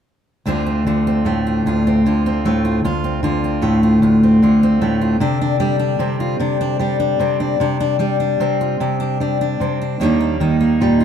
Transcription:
0.46 D2 D3 A3 C4 F4
0.66 C4
0.87 D3 F4
1.07 C4
1.25 A2 A3
1.47 F4
1.66 D2 F4
1.87 C4
2.06 D3 F4
2.26 C4
2.45 A2 A3
2.65 F4
2.84 D2 F4
3.04 C4
3.23 D3 F4
3.44 C4
3.62 A2 A3
3.83 F4
4.02 D2 F4
4.23 C4
4.42 D3 F4
4.63 C4
4.81 A2 A3
5.01 F4
5.20 C3 D4
5.41 D4
5.60 G3 D4
5.79 D4
5.99 C3 C4
6.20 F4
6.40 C3 D4
6.61 D4
6.79 G3 D4
7.00 D4
7.19 C3 C4
7.40 D4
7.60 C3 D4
7.80 D4
7.99 G3 D4
8.20 D4
8.40 C3 C4
8.61 F4
8.80 C3 D4
9.00 D4
9.20 G3 D4
9.41 D4
9.60 C3 C4
9.82 D4
10.00 D#2 D#3 G3 A#3 D4
10.20 A#3
10.40 D#3 D#4
10.60 A#3
10.81 A#2 G3
11.00 F4

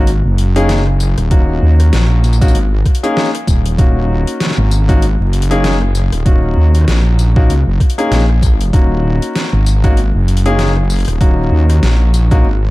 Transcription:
Already playing: G#1
0.07 closed hi-hat
0.25 F#1
0.38 closed hi-hat
0.56 A#3 C#4 D#4 G#4, closed hi-hat
0.69 snare, closed hi-hat
0.87 cross-stick
1.00 closed hi-hat, tambourine
1.18 D#1, cross-stick, closed hi-hat
1.31 A#3 C#4 D#4 F#4, kick, closed hi-hat
1.62 D#2
1.80 cross-stick, closed hi-hat
1.93 A#1, snare, closed hi-hat
2.24 closed hi-hat, tambourine
2.33 tambourine
2.41 A#3 C#4 D#4 F#4, kick, closed hi-hat, tambourine
2.48 tambourine
2.55 G#1, closed hi-hat
2.86 kick, cross-stick, closed hi-hat
2.95 closed hi-hat
3.03 A#3 C#4 D#4 G#4, closed hi-hat
3.17 snare
3.35 cross-stick, closed hi-hat
3.47 D#1, kick, closed hi-hat, tambourine
3.66 closed hi-hat
3.78 D#1 A#3 C#4 D#4 F#4, kick, closed hi-hat
4.27 closed hi-hat
4.40 snare, closed hi-hat
4.46 snare
4.51 snare
4.58 G#1
4.71 tambourine
4.89 A#3 C#4 D#4 F#4, kick, closed hi-hat
5.02 closed hi-hat
5.20 F#1
5.33 closed hi-hat
5.42 closed hi-hat
5.51 A#3 C#4 D#4 G#4, closed hi-hat
5.64 snare, closed hi-hat
5.82 cross-stick
5.95 closed hi-hat, tambourine
6.12 D#1, cross-stick, closed hi-hat
6.26 A#3 C#4 D#4 F#4, kick, closed hi-hat
6.57 D#2
6.75 cross-stick, closed hi-hat
6.78 cross-stick
6.81 cross-stick
6.84 A#1, cross-stick, snare, closed hi-hat
7.19 closed hi-hat, tambourine
7.36 A#3 C#4 D#4 F#4, kick
7.49 C#2, closed hi-hat
7.67 F#1
7.80 kick, cross-stick, closed hi-hat
7.90 closed hi-hat
7.98 A#3 C#4 D#4 G#4, closed hi-hat
8.11 A#1, snare, closed hi-hat
8.29 cross-stick
8.42 kick, closed hi-hat, tambourine
8.61 closed hi-hat
8.73 D#1 A#3 C#4 D#4 F#4, kick, closed hi-hat
9.22 closed hi-hat
9.36 snare, closed hi-hat
9.53 G#1
9.66 closed hi-hat, tambourine
9.84 A#3 C#4 D#4 F#4, kick, closed hi-hat
9.97 closed hi-hat
10.15 F#1
10.28 closed hi-hat
10.37 closed hi-hat
10.46 A#3 C#4 D#4 G#4, closed hi-hat
10.59 snare, closed hi-hat
10.77 cross-stick
10.90 closed hi-hat, tambourine
10.93 closed hi-hat
10.96 closed hi-hat
10.99 closed hi-hat
11.05 D#1, cross-stick, closed hi-hat
11.08 closed hi-hat
11.21 A#3 C#4 D#4 F#4, kick, closed hi-hat
11.52 D#2
11.70 cross-stick, closed hi-hat
11.83 A#1, snare, closed hi-hat
12.14 closed hi-hat, tambourine
12.31 A#3 C#4 D#4 F#4, kick, closed hi-hat
12.44 G#1

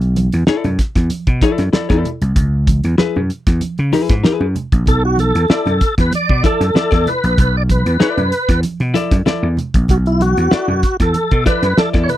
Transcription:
Already playing: B1
0.01 closed hi-hat
0.16 closed hi-hat, high conga
0.32 E2, closed hi-hat
0.47 E4 A4 D5, muted slap bass stroke, snare, muted conga
0.64 F#2, closed hi-hat, low conga
0.79 kick, snare, closed hi-hat
0.95 E2, kick, snare, closed hi-hat
1.10 muted slap bass stroke, closed hi-hat, high conga
1.27 B2, kick, closed hi-hat, muted conga
1.41 E4 A4 D5, kick, snare, closed hi-hat, high conga
1.58 F#2, snare, closed hi-hat
1.73 E4 A4 D5, muted slap bass stroke, snare, high conga
1.89 E2 E4 A4 D5, kick, snare, closed hi-hat, muted conga
2.05 closed hi-hat, low conga
2.21 C2, closed hi-hat
2.36 C#2, kick, closed hi-hat, low conga
2.67 kick, closed hi-hat, high conga
2.84 E2, closed hi-hat
2.98 E4 G#4 B4, muted slap bass stroke, snare, muted conga, high conga
3.16 F#2, low conga
3.30 closed hi-hat
3.47 E2, kick, snare, closed hi-hat
3.61 muted slap bass stroke, closed hi-hat, muted conga, high conga
3.78 C#3, closed hi-hat, muted conga
3.92 E4 G#4 B4, snare, open hi-hat, high conga
4.09 G#2, kick, snare, closed hi-hat
4.23 E4 G#4 B4, muted slap bass stroke, snare, high conga
4.40 F#2, muted conga
4.55 closed hi-hat, low conga
4.72 A#1, kick, closed hi-hat
4.86 B1 A4, kick, closed hi-hat, muted conga, low conga
5.05 F#4
5.17 A4, closed hi-hat, high conga
5.35 E2, closed hi-hat
5.48 E4 A4 D5, muted slap bass stroke, snare, muted conga
5.66 F#2, closed hi-hat, muted conga, low conga
5.81 kick, snare, closed hi-hat
5.98 E2 B4, kick, snare, closed hi-hat
6.12 D5, muted slap bass stroke, closed hi-hat, muted conga, high conga
6.29 B2, kick
6.43 E4 A4 D5, kick, snare, closed hi-hat, high conga
6.60 F#2, snare, closed hi-hat
6.74 E4 A4 D5, muted slap bass stroke, snare, high conga
6.91 E2 E4 A4 D5, kick, snare, closed hi-hat
7.06 B4, closed hi-hat, low conga
7.24 A#1, closed hi-hat
7.37 B1 B4, kick, closed hi-hat, muted conga, low conga
7.57 D5
7.69 B4, kick, closed hi-hat, high conga
7.86 E2, closed hi-hat
8.00 E4 A4 D5, muted slap bass stroke, snare
8.17 F#2, closed hi-hat, muted conga, low conga
8.32 closed hi-hat
8.49 E2, kick, snare, closed hi-hat
8.63 muted slap bass stroke, closed hi-hat, muted conga, high conga
8.80 B2, closed hi-hat
8.94 E4 A4 D5, snare, closed hi-hat, high conga
9.11 F#2, kick, snare, closed hi-hat
9.26 E4 A4 D5, muted slap bass stroke, snare, muted conga, high conga
9.43 E2
9.57 closed hi-hat, low conga
9.74 A#1, kick, closed hi-hat
9.88 B1 F#4, kick, closed hi-hat, muted conga, low conga
10.06 E4, closed hi-hat
10.20 F#4, closed hi-hat, high conga
10.37 E2, closed hi-hat
10.51 E4 A4 D5, muted slap bass stroke, snare
10.68 F#2, low conga
10.83 kick, snare, closed hi-hat
11.00 E2 A4, kick, snare, closed hi-hat
11.14 muted slap bass stroke, closed hi-hat, high conga
11.31 B2, kick, closed hi-hat
11.45 E4 A4 B4 D5, kick, snare, closed hi-hat, high conga
11.62 F#2, snare, closed hi-hat
11.78 E4 A4 D5, muted slap bass stroke, snare, muted conga, high conga
11.93 E2 E4 A4 D5, kick, snare, muted conga
12.04 C#5
12.08 B4, closed hi-hat, low conga

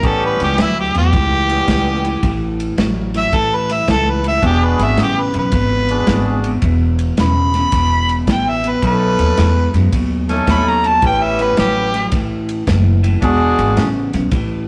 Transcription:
0.03 A1 A2 E3 G3 B3 C#4 G4 A4, kick, ride
0.26 B4
0.40 C#2 G4, snare, ride
0.58 D2 A2 F#3 E4, snare, ride
0.80 G4
0.95 E2 A2 F#3 G4, ride
1.13 C#2 A2 E3, kick, ride
1.48 G3 B3 C#4 G4, snare, ride
1.68 C#2 A2 E3, kick, snare, ride
2.05 A2 E3, ride
2.23 A1 A2 E3, kick, ride
2.60 ride
2.78 A1 A2 F#3, snare, ride
3.14 A2 F#3 E5, snare, ride
3.33 A1 A2 E3 A4, kick, snare, ride
3.55 B4
3.69 E5, snare, ride
3.88 C#2 A2 E3 A4, kick, snare, ride
4.10 B4
4.24 A2 E3 E5, ride
4.41 E1 E2 B2 G#3 D4 F#4 G#4, kick, ride
4.46 G4
4.65 B4
4.79 G#1, snare, ride
4.84 E5
4.97 A1 E2 C#3, snare, ride
5.02 G4
5.21 B4
5.34 B1 E2 C#3, ride
5.39 B4
5.52 G#1 E2 B2, kick, snare, ride
5.88 G#3 D4 F#4 G#4, ride
6.07 G#1 E2 B2, kick, snare, ride
6.44 E2 B2, ride
6.62 E1 E2 B2, kick, ride
6.99 ride
7.17 E1 E2 C#3 B5, snare, ride
7.54 E2 C#3, snare, ride
7.72 E1 E2 B2, kick, snare, ride
8.09 ride
8.27 A1 E2 B2, kick, snare, ride
8.32 G5
8.50 E5
8.64 E2 B2, ride
8.68 B4
8.82 B1 B2 F#3 A3 C#4 D#4 A4, kick, ride
8.87 B4
9.19 D#2, snare, ride
9.37 E2 B2 G#3, snare, ride
9.74 F#2 B2 G#3, snare, ride
9.93 D#2 B2 F#3, kick, ride
10.28 A3 C#4 D#4 A4, snare, ride
10.47 D#2 B2 F#3 B5, kick, snare, ride
10.69 A#5
10.84 B2 F#3 A5, ride
11.02 A1 A2 E3 B3 C#4 G4 B4, kick, ride
11.06 G5
11.23 E5
11.39 B4, snare, ride
11.57 A1 A2 F#3 G4, snare, ride
11.94 A2 F#3, snare, ride
12.12 A1 A2 E3, kick, snare, ride
12.49 ride
12.67 F#1 A2 E3, kick, snare, ride
13.03 A2 E3, ride
13.21 E1 E2 B2 G#3 D4 F#4 G#4, kick, ride
13.59 G#1, ride
13.77 A1 E2 C#3, snare, ride
14.13 B1 E2 C#3, snare, ride
14.31 A1 A2 E3, kick, snare, ride

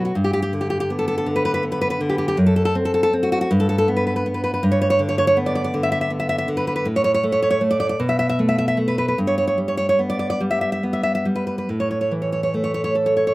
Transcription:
Already playing: B2 F#3
0.05 F#4
0.15 G2
0.24 G4
0.33 G4
0.42 G4
0.53 D3
0.61 G4
0.70 G4
0.80 G4
0.90 B3
0.99 A4
1.08 A4
1.18 A4
1.26 D3
1.36 B4
1.45 B4
1.54 B4
1.63 B3
1.72 B4
1.81 B4
1.90 B4
2.01 D3
2.09 G4
2.18 G4
2.28 G4
2.37 F#2
2.46 A4
2.56 A4
2.65 A4
2.75 C4
2.85 A4
2.94 A4
3.03 A4
3.13 C4
3.23 F#4
3.32 F#4
3.41 F#4
3.51 G2
3.60 A4
3.69 A4
3.78 A4
3.88 B3
3.97 B4
4.07 B4
4.16 B4
4.26 B3
4.34 B4
4.44 B4
4.54 B4
4.63 G2
4.71 C#5
4.82 C#5
4.90 C#5
4.99 D3
5.09 C#5
5.18 C#5
5.27 C#5
5.37 B3
5.46 D5
5.55 D5
5.64 D5
5.74 D3
5.83 E5
5.92 E5
6.01 E5
6.10 B3
6.20 E5
6.29 E5
6.38 E5
6.48 D3
6.57 B4
6.67 B4
6.76 B4
6.85 A2
6.96 C#5
7.04 C#5
7.14 C#5
7.23 A3
7.32 C#5
7.42 C#5
7.51 C#5
7.61 A3
7.71 D5
7.80 D5
7.89 D5
8.00 B2
8.09 E5
8.19 E5
8.29 E5
8.39 A3
8.49 E5
8.58 E5
8.68 E5
8.77 A3
8.88 B4
8.98 B4
9.08 B4
9.18 G2
9.27 C#5
9.38 C#5
9.47 C#5
9.58 G3
9.68 C#5
9.77 C#5
9.89 C#5
9.99 B3
10.10 D5
10.19 D5
10.30 D5
10.40 G3
10.51 E5
10.61 E5
10.72 E5
10.83 B3
10.93 E5
11.03 E5
11.15 E5
11.25 G3
11.35 B4
11.47 B4
11.58 B4
11.69 A2
11.80 C#5
11.91 C#5
12.01 C#5
12.11 E3
12.22 C#5
12.32 C#5
12.43 C#5
12.54 A3
12.64 C#5
12.74 C#5
12.84 C#5
12.95 A4
13.06 C#5
13.17 C#5
13.27 C#5

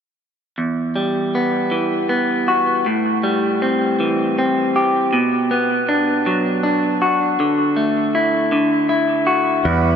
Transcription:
0.58 E2
0.96 G3
1.35 B3
1.71 E3
2.09 B3
2.48 F#4
2.86 A2
3.23 G3
3.62 C4
4.00 E3
4.38 C4
4.76 G4
5.13 B2
5.51 B3
5.89 D4
6.26 F#3
6.63 D4
7.02 F#4
7.40 D3
7.76 A3
8.15 E4
8.52 D3
8.89 E4
9.27 F#4
9.64 E2 G3 E4 B4 F#5

